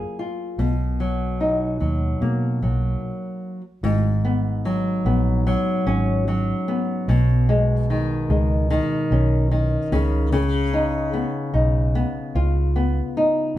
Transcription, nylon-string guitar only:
Already playing: F#3 A#3 F4 G#4
0.19 F4
0.59 B2
1.00 F#3
1.40 D#4
1.80 F#3
2.22 A#3
2.62 F#3
3.84 G#2
4.25 B3
4.65 F#3
5.06 B3
5.47 F#3
5.87 C#4
6.28 F#3
6.68 B3
7.09 B2
7.49 G#3
7.90 D#3
8.30 G#3
8.70 D#3
9.12 C#4
9.51 D#3
9.92 C#3
10.32 C#3
10.73 D#4
11.13 B3
11.54 D#4
11.95 B3
12.35 F4
12.76 B3
13.17 D#4

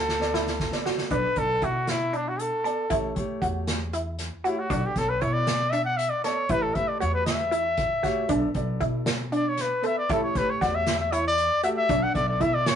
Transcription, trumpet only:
Already playing: A4
1.11 B4
1.38 A4
1.64 F#4
1.90 E4
2.16 D4
2.29 F#4
2.40 A4
4.46 E4
4.59 F#4
4.86 G4
4.98 A4
5.09 B4
5.21 C#5
5.33 D5
5.72 E5
5.85 F#5
5.97 E5
6.10 D5
6.24 C#5
6.51 B4
6.62 A4
6.75 E5
6.88 D5
7.01 C#5
7.14 B4
7.27 E5
9.36 D5
9.49 C#5
9.61 B4
9.86 E5
9.98 D5
10.12 A4
10.24 C#5
10.38 B4
10.50 C#5
10.62 D5
10.75 E5
11.00 E5
11.12 C#5
11.28 D5
11.64 E5
11.77 E5
12.03 F#5
12.15 D5
12.29 D5
12.42 E5
12.54 D5
12.67 C#5

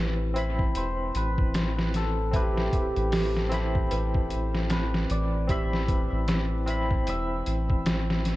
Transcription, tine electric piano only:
Already playing: C4 E4 B4
0.34 C4 E4
0.38 B5
2.31 C4 E4
2.36 B4
3.49 C4 E4
3.54 B5
5.47 C4 E4
5.52 B5
6.66 C4 E4
6.70 B5

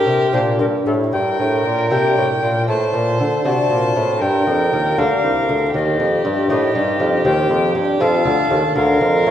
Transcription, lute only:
0.06 C3
0.33 A#2 A#3 D4 G4
0.59 G2
0.87 A2
1.13 G2
1.39 A2
1.65 A#2
1.91 C3 A#3 D4 G4
2.17 A2
2.43 A#2
2.68 A2
2.94 A#2
3.20 D3
3.45 C3 C4 D4 F#4
3.70 A#2
3.96 A2
4.22 G2
4.47 F2
4.72 D#2
4.98 D2 A#3 D4 G4
5.49 D2
5.74 D#2
6.00 F2
6.25 G2
6.50 A2 A#3 D#4 G4
6.75 G2
7.00 F2
7.25 D#2 C4 G4
7.50 F2
7.75 G2
8.00 F2 C4 F4 A4
8.25 D2
8.50 D#2
8.75 D2
9.01 F2
9.27 A2

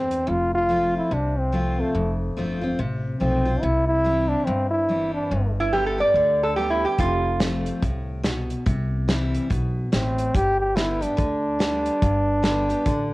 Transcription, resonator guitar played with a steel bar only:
5.60 E4
5.73 G4
5.87 A4
6.00 D5
6.43 A4
6.56 G4
6.70 E4
6.85 G4
7.00 F4

